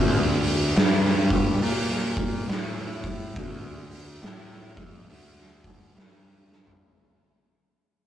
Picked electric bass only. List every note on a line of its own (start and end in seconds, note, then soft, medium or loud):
0.00 0.73 D2 medium
0.76 1.60 G2 loud
1.62 2.46 A#2 medium
2.49 3.33 A2 loud
3.36 4.19 D2 loud
4.22 4.73 A2 loud
4.77 5.07 F2 medium
5.10 5.93 D2 medium
5.96 6.79 G2 medium